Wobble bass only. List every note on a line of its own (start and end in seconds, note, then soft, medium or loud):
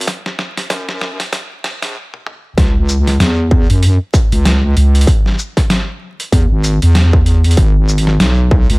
0.70 1.17 F#2 loud
1.82 1.95 A#1 loud
2.58 3.18 C#2 loud
3.20 3.67 E2 loud
3.70 3.98 F#2 loud
4.32 4.74 C#2 loud
4.76 5.06 C#2 loud
6.32 6.48 E2 loud
6.51 6.79 G#1 medium
6.82 7.56 E2 loud
7.58 8.18 G#1 loud
8.20 8.67 B1 loud
8.70 8.79 C#2 loud